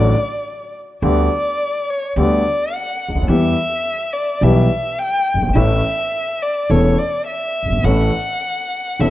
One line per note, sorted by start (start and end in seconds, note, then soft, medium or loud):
0.00 0.12 A1 medium
0.00 0.13 A1 medium
0.00 0.13 A2 medium
0.00 0.12 D3 medium
0.00 0.13 F#3 medium
0.00 0.13 A3 medium
0.00 0.13 F#4 medium
0.00 0.74 D5 medium
1.02 1.26 D2 medium
1.02 1.27 D2 medium
1.02 1.27 D3 medium
1.02 1.27 G3 medium
1.02 1.27 B3 medium
1.02 1.27 G4 medium
1.02 1.91 D5 medium
1.90 2.17 C#5 medium
2.16 2.40 D2 medium
2.16 2.41 D2 medium
2.16 2.41 D3 medium
2.16 2.41 G3 medium
2.16 2.41 B3 medium
2.16 2.41 G4 medium
2.16 2.74 D5 medium
2.73 3.15 F#5 medium
3.08 3.15 C#2 soft
3.08 3.14 C#2 soft
3.15 3.21 D2 medium
3.15 3.23 D2 medium
3.22 3.27 D#2 medium
3.22 3.30 D#2 medium
3.28 3.52 E2 loud
3.28 3.53 E2 medium
3.28 3.53 E3 medium
3.28 3.53 G3 medium
3.28 3.53 B3 medium
3.28 3.53 G4 medium
3.28 4.15 E5 medium
4.14 4.44 D5 medium
4.41 4.66 B1 medium
4.41 4.67 B2 medium
4.41 4.66 E3 medium
4.41 4.66 G3 medium
4.41 4.66 B3 medium
4.41 4.67 G4 medium
4.41 5.00 E5 medium
4.99 5.42 G5 loud
5.34 5.41 F#1 soft
5.34 5.42 F#1 soft
5.41 5.48 G1 medium
5.41 5.49 G1 medium
5.48 5.55 G#1 medium
5.48 5.56 G#1 medium
5.55 5.80 A1 medium
5.55 5.80 A2 medium
5.55 5.80 E3 medium
5.55 5.80 A3 medium
5.55 5.80 C#4 medium
5.55 5.80 A4 medium
5.55 6.44 E5 loud
6.42 6.72 D5 medium
6.70 6.94 E1 medium
6.70 6.94 E2 medium
6.70 6.94 E3 medium
6.70 6.94 A3 medium
6.70 6.94 C#4 medium
6.70 6.94 A4 medium
6.70 7.00 C#5 medium
6.98 7.26 D5 medium
7.26 7.86 E5 medium
7.63 7.69 F#1 soft
7.63 7.71 F#1 soft
7.70 7.76 G1 soft
7.70 7.78 G1 medium
7.77 7.83 G#1 medium
7.77 7.85 G#1 medium
7.84 8.09 A1 medium
7.84 8.09 A2 medium
7.84 8.09 E3 medium
7.84 8.09 A3 medium
7.84 8.10 C#4 medium
7.84 8.10 A4 medium
7.84 9.02 F#5 medium
9.00 9.10 E1 medium
9.00 9.10 E2 medium
9.00 9.10 E3 medium
9.00 9.10 A3 medium
9.00 9.10 C#4 medium
9.00 9.10 A4 medium
9.00 9.10 E5 medium